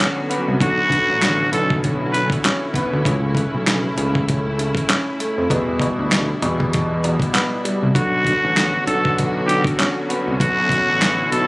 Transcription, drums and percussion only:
0.00 snare, clap, closed hi-hat
0.31 closed hi-hat
0.61 kick, closed hi-hat
0.90 kick, closed hi-hat
1.22 snare, clap, closed hi-hat
1.53 closed hi-hat
1.70 kick
1.84 kick, closed hi-hat
2.14 closed hi-hat
2.30 kick, closed hi-hat
2.45 snare, clap, closed hi-hat
2.74 kick, closed hi-hat
3.05 kick, closed hi-hat
3.35 kick, closed hi-hat
3.67 snare, clap, closed hi-hat
3.98 closed hi-hat
4.15 kick
4.29 kick, closed hi-hat
4.59 closed hi-hat
4.75 kick, closed hi-hat
4.90 snare, clap, closed hi-hat
5.20 closed hi-hat
5.50 kick, closed hi-hat
5.79 kick, closed hi-hat
6.12 snare, clap, closed hi-hat
6.42 closed hi-hat
6.60 kick
6.73 kick, closed hi-hat
7.04 closed hi-hat
7.20 kick, closed hi-hat
7.35 snare, clap, closed hi-hat
7.65 closed hi-hat
7.95 kick, closed hi-hat
8.24 kick, closed hi-hat
8.57 snare, clap, closed hi-hat
8.87 closed hi-hat
9.05 kick
9.18 kick, closed hi-hat
9.49 closed hi-hat
9.64 kick, closed hi-hat
9.80 snare, clap, closed hi-hat
10.10 closed hi-hat
10.40 kick, closed hi-hat
10.69 kick, closed hi-hat
11.02 snare, clap, closed hi-hat
11.32 closed hi-hat

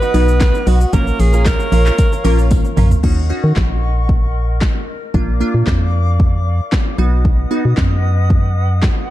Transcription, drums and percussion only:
0.02 shaker
0.14 open hi-hat, tambourine, shaker
0.28 shaker
0.40 kick, snare, clap, closed hi-hat, tambourine, shaker
0.55 shaker
0.67 open hi-hat, tambourine, shaker
0.81 shaker
0.93 kick, closed hi-hat, shaker
1.07 shaker
1.19 open hi-hat, tambourine, shaker
1.33 shaker
1.45 kick, snare, clap, closed hi-hat, tambourine, shaker
1.60 shaker
1.72 open hi-hat, shaker
1.86 clap, shaker
1.98 kick, closed hi-hat, tambourine, shaker
2.13 shaker
2.25 open hi-hat, tambourine, shaker
2.39 shaker
2.51 kick, closed hi-hat, high tom, tambourine, shaker
2.65 shaker
2.77 mid tom, open hi-hat, tambourine, shaker
2.91 floor tom, shaker
3.04 kick, crash
3.56 kick, snare, clap
4.09 kick
4.61 kick, snare, clap
5.14 kick
5.66 kick, snare, clap
6.20 kick
6.72 kick, snare, clap
7.25 kick
7.77 kick, snare, clap
8.30 kick
8.82 kick, snare, clap

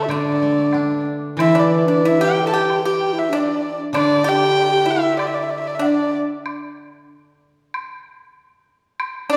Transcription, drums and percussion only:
0.10 high woodblock
0.73 high woodblock, low woodblock
1.39 high woodblock
2.70 high woodblock
3.95 high woodblock
5.19 high woodblock
5.82 low woodblock
6.46 high woodblock
7.74 high woodblock
9.00 high woodblock

